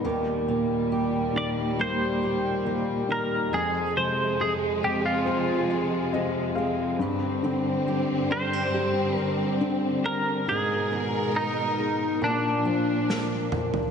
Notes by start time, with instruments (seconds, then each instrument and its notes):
Already playing: steel-string acoustic guitar B3 D#4
0.04 grand piano D#2, string section D#2 A#2 G3, steel-string acoustic guitar D#3 G4
0.48 grand piano A#2, steel-string acoustic guitar A#3
0.92 steel-string acoustic guitar G4
1.35 grand piano D#3, steel-string acoustic guitar D#4, clean electric guitar D5
1.79 grand piano G3, steel-string acoustic guitar A#3, clean electric guitar C5
2.23 steel-string acoustic guitar G4
2.65 grand piano A#2, steel-string acoustic guitar A#3
3.09 grand piano D#3, steel-string acoustic guitar D#4, clean electric guitar A#4
3.52 grand piano F2, steel-string acoustic guitar F2 G#4, string section F2 C3 G#3, clean electric guitar G#4
3.96 grand piano C3, steel-string acoustic guitar G#3, clean electric guitar C5
4.40 steel-string acoustic guitar G#4, clean electric guitar G#4
4.82 grand piano G#3, steel-string acoustic guitar C4, clean electric guitar G4
5.06 clean electric guitar F4
5.25 steel-string acoustic guitar F3, grand piano C4
5.71 steel-string acoustic guitar G#4
6.13 grand piano C3 D#5, steel-string acoustic guitar G#3
6.55 grand piano G#3 F5, steel-string acoustic guitar C4
6.99 grand piano G2, string section G2 D3 G3 C4, steel-string acoustic guitar G2 G4
7.43 grand piano D3, steel-string acoustic guitar C4
7.88 steel-string acoustic guitar G4
8.30 steel-string acoustic guitar C4, grand piano D4, clean electric guitar C5
8.53 steel-string acoustic guitar D4
8.74 steel-string acoustic guitar G3, grand piano G4
9.17 steel-string acoustic guitar G4, clean electric guitar A#4
9.61 grand piano D3, steel-string acoustic guitar C4
10.04 grand piano D4, steel-string acoustic guitar D4, clean electric guitar A#4
10.48 grand piano G#2, steel-string acoustic guitar G#2 A#4, string section B2 G#3 A#4, clean electric guitar G#4
10.92 grand piano D#3, steel-string acoustic guitar B3
11.36 clean electric guitar D#4, steel-string acoustic guitar A#4
11.78 grand piano G#3, steel-string acoustic guitar D#4
12.22 steel-string acoustic guitar A#2, grand piano A#2, string section A#2 F3 D4, clean electric guitar D4
12.65 grand piano F3, steel-string acoustic guitar F4
13.09 steel-string acoustic guitar A#3, snare
13.52 grand piano A#2, steel-string acoustic guitar D4, mid tom
13.74 floor tom